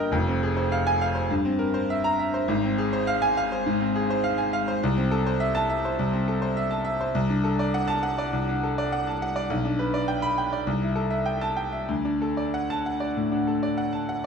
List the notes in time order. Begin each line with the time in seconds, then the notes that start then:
Already playing: G2 A#3 G4 A#4 D#5 G5
0.11 F1 F2
0.27 C4
0.43 G#4
0.57 C5
0.72 F5
0.87 G#5
1.01 F5
1.15 C5
1.30 G2
1.45 C4
1.59 A#4
1.74 C5
1.90 E5
2.04 A#5
2.19 E5
2.34 C5
2.48 G#1 G#2
2.64 C4
2.78 G#4
2.93 C5
3.07 F5
3.22 G#5
3.37 F5
3.52 C5
3.66 G#2
3.81 C4
3.96 G#4
4.10 C5
4.24 F5
4.38 G#5
4.53 F5
4.68 C5
4.83 C2
4.97 C4
5.11 A4
5.26 C5
5.40 E5
5.55 A5
5.70 E5
5.85 C5
5.99 C2
6.13 C4
6.28 A4
6.42 C5
6.57 E5
6.71 A5
6.85 E5
7.00 C5
7.15 C2
7.30 D4
7.44 A4
7.59 D5
7.74 F#5
7.88 A5
8.03 F#5
8.18 D5
8.33 C2
8.49 D4
8.63 A4
8.78 D5
8.92 F#5
9.07 A5
9.22 F#5
9.36 D5
9.50 B1
9.65 D4
9.79 B4
9.94 D5
10.08 G5
10.22 B5
10.38 G5
10.53 D5
10.67 C2
10.82 E4
10.96 A4
11.11 E5
11.26 G5
11.41 A5
11.57 G5
11.72 E5
11.88 D2
12.05 D4
12.22 A4
12.37 D5
12.54 F#5
12.70 A5
12.86 F#5
13.00 D5
13.17 A2
13.32 D4
13.47 A4
13.63 D5
13.77 F#5
13.93 A5
14.09 F#5